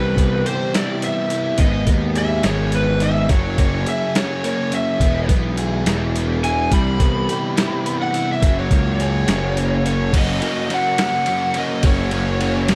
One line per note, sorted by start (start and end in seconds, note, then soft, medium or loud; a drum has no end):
0.00 0.15 C2 medium
0.00 0.72 C3 medium
0.00 0.73 E3 medium
0.00 0.73 G3 loud
0.00 0.17 B3 medium
0.00 0.73 G4 medium
0.00 0.45 B4 medium
0.17 0.43 C2 medium
0.17 1.02 B3 medium
0.17 kick medium
0.17 closed hi-hat medium
0.46 1.59 G4 medium
0.46 0.74 C5 medium
0.46 closed hi-hat medium
0.74 1.59 C3 medium
0.74 1.59 E3 medium
0.74 1.58 G3 medium
0.74 1.31 E4 medium
0.74 1.58 G4 medium
0.74 1.03 D5 medium
0.74 snare loud
0.74 closed hi-hat loud
1.02 1.59 B3 medium
1.02 1.59 E5 medium
1.02 closed hi-hat medium
1.30 1.60 E4 medium
1.30 closed hi-hat medium
1.58 1.85 G#1 loud
1.58 2.43 G#2 medium
1.58 2.44 D#3 medium
1.58 2.45 G#3 medium
1.58 2.44 B3 medium
1.58 2.43 D#4 medium
1.58 2.43 G#4 medium
1.58 1.88 D#5 medium
1.58 kick loud
1.58 closed hi-hat medium
1.87 2.40 D#2 medium
1.87 2.73 B3 medium
1.87 kick medium
1.87 closed hi-hat medium
2.15 3.34 G#4 medium
2.15 2.45 E5 loud
2.15 closed hi-hat medium
2.43 3.26 G#1 medium
2.43 3.29 G#2 medium
2.43 3.29 D#3 medium
2.43 3.30 G#3 medium
2.43 3.28 B3 medium
2.43 3.28 D#4 medium
2.43 3.31 G#4 medium
2.43 2.73 C#5 medium
2.43 snare loud
2.43 closed hi-hat medium
2.72 3.31 B3 medium
2.72 3.02 B4 medium
2.72 closed hi-hat medium
3.00 3.30 D#4 medium
3.00 3.30 E5 loud
3.00 closed hi-hat medium
3.29 3.56 F#1 medium
3.29 4.13 F#2 medium
3.29 4.14 C#3 medium
3.29 4.14 F#3 medium
3.29 4.14 A#3 medium
3.29 4.14 C#4 loud
3.29 4.14 F#4 medium
3.29 3.58 C#5 medium
3.29 kick loud
3.29 closed hi-hat medium
3.58 3.84 F#1 medium
3.58 4.43 A#3 medium
3.58 3.87 C#5 medium
3.58 kick medium
3.58 closed hi-hat medium
3.86 5.01 G#4 medium
3.86 4.16 E5 medium
3.86 closed hi-hat medium
4.15 5.00 F#2 medium
4.15 5.00 C#3 medium
4.15 5.00 F#3 medium
4.15 5.00 A#3 medium
4.15 4.99 C#4 medium
4.15 4.99 F#4 medium
4.15 4.44 C#5 medium
4.15 snare loud
4.15 closed hi-hat medium
4.44 5.00 A#3 medium
4.44 4.73 C#5 medium
4.44 closed hi-hat medium
4.71 5.00 C#4 medium
4.71 5.29 E5 medium
4.71 closed hi-hat medium
5.00 5.26 E1 loud
5.00 5.85 E2 medium
5.00 5.85 B2 medium
5.00 5.87 E3 medium
5.00 5.85 G#3 medium
5.00 5.86 B3 medium
5.00 5.85 G#4 loud
5.00 kick loud
5.00 closed hi-hat medium
5.29 5.82 B1 medium
5.29 6.14 B3 medium
5.29 kick medium
5.29 closed hi-hat medium
5.57 6.72 G#4 medium
5.57 closed hi-hat medium
5.86 6.67 E1 medium
5.86 6.71 E2 medium
5.86 6.70 B2 medium
5.86 6.70 E3 medium
5.86 6.70 G#3 medium
5.86 6.70 B3 medium
5.86 6.43 E4 medium
5.86 6.70 G#4 medium
5.86 snare loud
5.86 closed hi-hat loud
6.16 6.72 B3 medium
6.16 closed hi-hat medium
6.44 6.72 E4 medium
6.44 6.71 G#5 loud
6.44 closed hi-hat medium
6.71 6.98 C2 medium
6.71 7.55 C3 medium
6.71 7.55 E3 medium
6.71 7.56 G3 medium
6.71 7.55 G4 loud
6.71 7.97 B5 medium
6.71 kick loud
6.71 closed hi-hat medium
7.00 7.26 C2 medium
7.00 7.84 B3 medium
7.00 kick medium
7.00 closed hi-hat medium
7.29 8.43 G4 medium
7.29 closed hi-hat medium
7.56 8.42 C3 medium
7.56 8.41 E3 medium
7.56 8.41 G3 medium
7.56 8.13 E4 medium
7.56 8.41 G4 medium
7.56 snare loud
7.56 closed hi-hat medium
7.85 8.42 B3 medium
7.85 closed hi-hat medium
8.02 8.29 F#5 medium
8.14 8.43 E4 medium
8.14 closed hi-hat medium
8.32 8.58 E5 medium
8.42 8.68 F#1 loud
8.42 9.26 F#2 medium
8.42 9.26 C#3 medium
8.42 9.26 F#3 loud
8.42 9.27 A#3 loud
8.42 9.26 C#4 medium
8.42 9.26 F#4 loud
8.42 kick loud
8.42 closed hi-hat medium
8.59 8.99 C#5 loud
8.71 9.24 C#2 medium
8.71 9.55 A#3 medium
8.71 kick medium
8.71 closed hi-hat medium
9.00 10.14 G#4 medium
9.00 9.86 C#5 medium
9.00 closed hi-hat medium
9.27 10.09 F#1 medium
9.27 10.12 F#2 medium
9.27 10.12 C#3 medium
9.27 10.12 F#3 medium
9.27 10.12 A#3 medium
9.27 10.11 C#4 medium
9.27 10.11 F#4 medium
9.27 snare loud
9.27 closed hi-hat medium
9.56 10.12 A#3 medium
9.56 closed hi-hat medium
9.86 10.12 C#4 medium
9.86 10.15 C#5 medium
9.86 closed hi-hat medium
10.13 10.39 F#1 loud
10.13 10.41 F#2 medium
10.13 10.41 C#3 medium
10.13 10.42 F#3 medium
10.13 10.42 A#3 loud
10.13 10.42 C#4 loud
10.13 10.43 F#4 medium
10.13 kick loud
10.13 crash loud
10.13 ride loud
10.17 10.74 D#5 medium
10.41 10.69 F#2 medium
10.41 10.69 C#3 medium
10.41 10.70 F#3 medium
10.41 10.70 A#3 medium
10.41 10.71 C#4 medium
10.41 10.70 F#4 medium
10.41 ride medium
10.69 10.97 F#2 medium
10.69 10.98 C#3 medium
10.69 10.99 F#3 medium
10.69 10.99 A#3 medium
10.69 10.98 C#4 medium
10.69 11.00 F#4 medium
10.69 ride medium
10.74 11.00 F#5 medium
10.98 11.26 F#2 medium
10.98 11.27 C#3 medium
10.98 11.28 F#3 medium
10.98 11.28 A#3 medium
10.98 11.27 C#4 medium
10.98 11.28 F#4 loud
10.98 11.59 F#5 medium
10.98 snare loud
10.98 ride loud
11.26 11.55 F#2 medium
11.26 11.55 C#3 medium
11.26 11.57 F#3 medium
11.26 11.57 A#3 medium
11.26 11.56 C#4 medium
11.26 11.57 F#4 medium
11.26 ride medium
11.54 11.82 F#2 medium
11.54 11.83 C#3 medium
11.54 11.84 F#3 medium
11.54 11.84 A#3 medium
11.54 11.84 C#4 medium
11.54 11.85 F#4 medium
11.54 ride medium
11.58 11.86 D#5 medium
11.83 12.75 F#1 medium
11.83 12.11 F#2 medium
11.83 12.11 C#3 medium
11.83 12.12 F#3 medium
11.83 12.13 A#3 loud
11.83 12.13 C#4 loud
11.83 12.14 F#4 loud
11.83 12.75 C#5 medium
11.83 kick loud
11.83 ride loud
12.11 12.40 F#2 medium
12.11 12.40 C#3 medium
12.11 12.42 F#3 medium
12.11 12.42 A#3 medium
12.11 12.41 C#4 loud
12.11 12.42 F#4 medium
12.11 ride medium
12.41 12.68 F#2 medium
12.41 12.68 C#3 medium
12.41 12.70 F#3 medium
12.41 12.70 A#3 medium
12.41 12.70 C#4 loud
12.41 12.71 F#4 medium
12.41 ride medium
12.68 12.75 F#2 medium
12.68 12.75 C#3 medium
12.68 12.75 F#3 medium
12.68 12.75 A#3 medium
12.68 12.75 C#4 loud
12.68 12.75 F#4 medium
12.68 snare loud
12.68 ride loud